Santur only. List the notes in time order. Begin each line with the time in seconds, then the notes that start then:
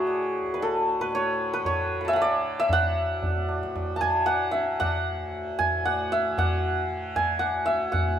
Already playing: F#4 G#4 B4 C#5 E5
0.54 B4
0.62 A4
1.01 B4
1.15 C#5
1.53 B4
1.66 C#5
2.01 A5 B5
2.08 E5 G#5
2.13 E5 F#5
2.22 D5
2.60 E5
2.73 F#5
3.96 A5
4.01 G#5
4.26 F#5
4.51 E5
4.80 F#5
5.59 G#5
5.85 F#5
6.12 E5
6.38 F#5
7.16 G#5
7.39 F#5
7.66 E5
7.92 F#5